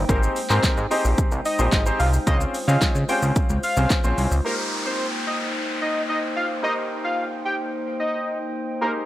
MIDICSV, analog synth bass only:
0, 0, Header, 1, 2, 480
1, 0, Start_track
1, 0, Tempo, 545455
1, 78, Time_signature, 4, 2, 24, 8
1, 7968, End_track
2, 0, Start_track
2, 0, Title_t, "Analog synth bass"
2, 0, Program_c, 0, 38
2, 81, Note_on_c, 0, 32, 109
2, 246, Note_off_c, 0, 32, 0
2, 441, Note_on_c, 0, 44, 92
2, 524, Note_off_c, 0, 44, 0
2, 559, Note_on_c, 0, 44, 50
2, 606, Note_off_c, 0, 44, 0
2, 681, Note_on_c, 0, 44, 99
2, 763, Note_off_c, 0, 44, 0
2, 921, Note_on_c, 0, 34, 94
2, 1003, Note_off_c, 0, 34, 0
2, 1159, Note_on_c, 0, 36, 91
2, 1242, Note_off_c, 0, 36, 0
2, 1400, Note_on_c, 0, 34, 100
2, 1482, Note_off_c, 0, 34, 0
2, 1516, Note_on_c, 0, 32, 92
2, 1683, Note_off_c, 0, 32, 0
2, 1759, Note_on_c, 0, 36, 99
2, 1925, Note_off_c, 0, 36, 0
2, 1998, Note_on_c, 0, 37, 109
2, 2164, Note_off_c, 0, 37, 0
2, 2357, Note_on_c, 0, 49, 100
2, 2441, Note_off_c, 0, 49, 0
2, 2477, Note_on_c, 0, 49, 52
2, 2526, Note_off_c, 0, 49, 0
2, 2597, Note_on_c, 0, 49, 95
2, 2681, Note_off_c, 0, 49, 0
2, 2837, Note_on_c, 0, 37, 93
2, 2921, Note_off_c, 0, 37, 0
2, 3077, Note_on_c, 0, 37, 94
2, 3160, Note_off_c, 0, 37, 0
2, 3317, Note_on_c, 0, 36, 95
2, 3400, Note_off_c, 0, 36, 0
2, 3557, Note_on_c, 0, 34, 99
2, 3640, Note_off_c, 0, 34, 0
2, 3676, Note_on_c, 0, 36, 98
2, 3760, Note_off_c, 0, 36, 0
2, 3796, Note_on_c, 0, 37, 92
2, 3880, Note_off_c, 0, 37, 0
2, 7968, End_track
0, 0, End_of_file